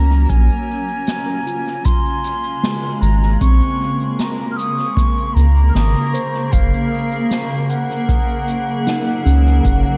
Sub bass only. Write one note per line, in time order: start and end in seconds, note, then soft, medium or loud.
0.00 0.27 C#2 medium
0.30 0.50 A#1 loud
3.02 3.37 G#1 loud
3.41 3.61 A#1 loud
5.36 5.71 C#2 medium
5.75 5.95 G#1 medium
6.53 6.73 F#1 loud
9.26 9.61 C#2 loud
9.65 9.85 F#1 loud